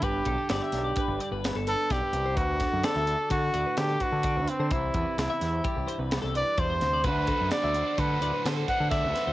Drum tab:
HH |xxxxxxxxxx|xxxxxxxxxx|xxxxxxxxxx|xxxxxxxxxx|
SD |--oo--o-o-|-oo---o---|--oo--o--o|--o---o-oo|
BD |oo--o---o-|oo--o--oo-|oo--o---o-|oo--o--oo-|